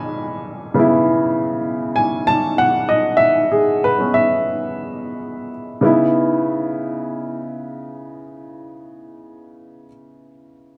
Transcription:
Already playing: C#3 B3 D#4 E4 B4 D#5 G#5 A5 B5
0.74 C#3 B3
0.79 E4
1.96 G#5
2.27 A5
2.58 F#5
2.89 D#5
3.17 E5
3.52 G#4
3.84 B4
3.98 B3 C#4
4.14 E5
5.81 C#3 B3 D#4 E4

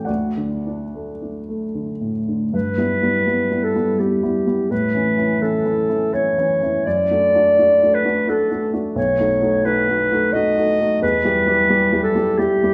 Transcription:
Already playing: A1 E3 A3 C#4 G4 E5 G5
0.05 D2 F#4 D5 F#5
0.37 D3
0.67 D4
0.94 A3
1.22 D4
1.49 A3
1.75 D3
2.01 A2
2.28 D3
2.53 G2 B4
2.78 G3 B3 E4
3.03 G3 B3 E4
3.27 G3 B3 E4
3.51 G3 B3 E4
3.64 A4
3.75 G3 B3 E4
3.99 G3 B3 E4 G4
4.23 G3 B3 E4
4.47 G3 B3 E4
4.71 A2 B4
4.95 E3 C#4 E4
5.18 E3 C#4 E4
5.41 E3 C#4 E4 A4
5.65 E3 C#4 E4
5.89 E3 C#4 E4
6.14 E3 C#4 E4 C#5
6.38 E3 C#4 E4
6.63 E3 C#4 E4
6.86 F#2 D5
7.10 A3 D4 F#4
7.35 A3 D4 F#4
7.58 A3 D4 F#4
7.83 A3 D4 F#4
7.94 B4
8.05 A3 D4 F#4
8.27 A3 D4 F#4 A4
8.51 A3 D4 F#4
8.73 A3 D4 F#4
8.96 B1 C#5
9.19 A3 D#4 F#4
9.41 A3 D#4 F#4
9.65 A3 D#4 F#4 B4
9.88 A3 D#4 F#4
10.11 A3 D#4 F#4
10.33 A3 D#4 F#4 D#5
10.57 A3 D#4 F#4
10.80 A3 D#4 F#4
11.02 E2 B4
11.25 G3 E4 G4
11.47 G3 E4 G4
11.69 G3 E4 G4
11.92 G3 E4 G4
12.03 A4
12.15 G3 E4 G4
12.38 G3 E4 G4
12.63 G3 E4 G4

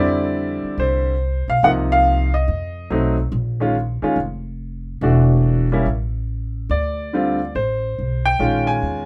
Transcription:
Already playing: F2 D3 G3 C4 E4 D5
0.64 muted upright bass stroke
0.78 C2 C5
1.48 B1 F5
1.63 C2 C3 F3 A#3 D#4 F#5
1.92 F5
2.34 D#5
2.48 F2
2.90 B1 F#3 A3 C4 D#4
3.32 A#1
3.60 D#3 G#3 C#4 F4
4.02 D#3 G#3 C#4 F4, muted upright bass stroke
4.16 F1
5.01 E1 E3 A3 D4 F#4
5.72 G3 A#3 C#4 E4
5.86 A1
6.70 D2 D5
7.13 D3 G3 C4 F4
7.55 A1 C5
7.99 B1
8.26 G5
8.39 A#1 D#3 G#3 C#4 F4
8.67 G#5
8.82 E2

